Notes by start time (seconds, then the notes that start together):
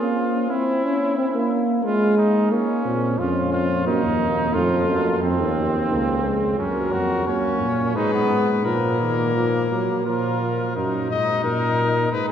Already playing: F4
0.00 A#3
0.50 C4 E4
0.84 C#4
1.18 C4
1.34 A#3
1.84 G#3 F4
2.18 D#4
2.52 A#3 C#4
2.85 A#2 C4
3.18 F2 C#4 F4
3.53 F4
3.86 F#2 A#3 D#4
4.03 D#2
4.53 F2 A3 F4
4.88 F#2
5.22 F2 C4
5.39 D#2
5.90 C#2 A#3
6.24 G#3
6.58 F#2 F#3 C#4 A#4
6.93 F2 F#4
7.27 F#2 A#3 C#4 C#5
7.61 A#2
7.96 G#2 G#3 D#4 B4
8.14 B3
8.30 G#2
8.65 A#2 F3 A#3 A#4
9.01 D#3
9.36 F3
9.71 F#3
10.05 A#2 F3 F4 A#4
10.41 F3
10.76 F#2 D#4 A#4
11.10 G#2 D#5
11.44 A#2 A#4
12.11 G#2 D#4 B4